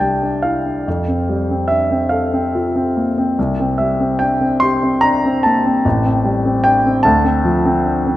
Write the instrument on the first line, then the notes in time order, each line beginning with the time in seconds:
grand piano
Already playing: C2 D4 A5
0.00 G3 G5
0.23 D4
0.42 E4 F5
0.66 D4
0.88 F2
1.08 C4
1.29 G3
1.51 C4
1.68 D4 E5
1.91 C4
2.09 A4 F5
2.34 C4
2.55 F4
2.76 C4
2.97 A#3
3.18 C4
3.39 C2
3.60 C4
3.78 G3 E5
4.00 C4
4.19 D4 G5
4.41 C4
4.60 G4 C6
4.83 C4
5.01 D4 A#5
5.25 C4
5.43 A#3 A5
5.66 C4
5.85 A1
6.05 C4
6.25 G3
6.45 C4
6.64 D4 G5
6.86 C4
7.03 D2 A5
7.24 C4
7.45 F3
7.65 C4
7.86 D4
8.07 C4